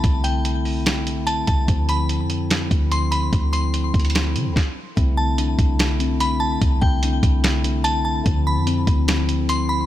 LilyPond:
<<
  \new Staff \with { instrumentName = "Synth bell" } { \time 4/4 \key c \major \tempo 4 = 146 r8 g''8 r2 a''8 a''8 | r8 b''8 r2 c'''8 b''8 | r8 c'''8 r2. | r8 a''8 r2 b''8 a''8 |
r8 g''8 r2 a''8 a''8 | r8 b''8 r2 c'''8 b''8 | }
  \new Staff \with { instrumentName = "Synth keys" } { \time 4/4 \key c \major r1 | r1 | r1 | c'8 c'8 d'4. c'4. |
c'8 c'8 d'4. c'4. | d8 d8 c'4. d4. | }
  \new Staff \with { instrumentName = "Pipe organ" } { \time 4/4 \key c \major <c' e'>1~ | <c' e'>1~ | <c' e'>2. r4 | <c' e'>1~ |
<c' e'>1~ | <c' e'>1 | }
  \new Staff \with { instrumentName = "Pipe organ" } { \clef bass \time 4/4 \key c \major << { a1 | f1~ | f2. r4 | a1~ |
a1 | f1 | } \\ { d1~ | d1~ | d2. r4 | d1~ |
d1 | d1 | } >> }
  \new Staff \with { instrumentName = "808-style bass" } { \clef bass \time 4/4 \key c \major c,2.~ c,8 c,8 | d,4~ d,16 f,4~ f,16 d,4. | d,4. d,4 d16 d,16 r4 | c,4. c,2~ c,8 |
c,8 c,4 c,2~ c,8 | d,8. f,8. d,2~ d,8 | }
  \new DrumStaff \with { instrumentName = "Drums" } \drummode { \time 4/4 <hh bd>8 hh8 hh8 hho8 <hh sn>8 hh8 hh8 <hh bd>8 | <hh bd>8 hh8 hh8 hh8 <hh sn>8 <hh bd>8 hh8 hh8 | <hh bd>8 hh8 hh8 <hh bd>32 hh32 hh32 hh32 <hh sn>8 hh8 <bd sn>4 | <hh bd>4 hh8 <hh bd>8 <hh sn>8 hh8 hh4 |
<hh bd>8 bd8 hh8 <hh bd>8 <hh sn>8 hh8 hh4 | <hh bd>4 hh8 <hh bd>8 <hh sn>8 hh8 hh4 | }
>>